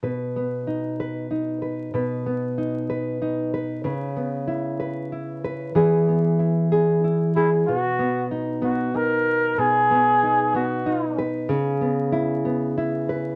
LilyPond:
<<
  \new Staff \with { instrumentName = "Flugelhorn" } { \time 6/8 \key b \major \tempo 4. = 63 r2. | r2. | r2. | r2 r8 e'8 |
fis'4 r8 fis'8 ais'4 | gis'4. fis'4 r8 | r2. | }
  \new Staff \with { instrumentName = "Nylon-string guitar" } { \time 6/8 \key b \major <b, b'>8 b8 dis'8 b'8 dis'8 b'8 | <b, b'>8 b8 dis'8 b'8 dis'8 b'8 | <cis b'>8 b8 e'8 b'8 e'8 b'8 | <e gis'>8 b8 e'8 gis'8 e'8 gis'8 |
b,8 b8 dis'8 b8 dis'4 | b,8 b8 dis'8 b8 dis'8 b'8 | cis8 b8 e'8 b8 e'8 b'8 | }
>>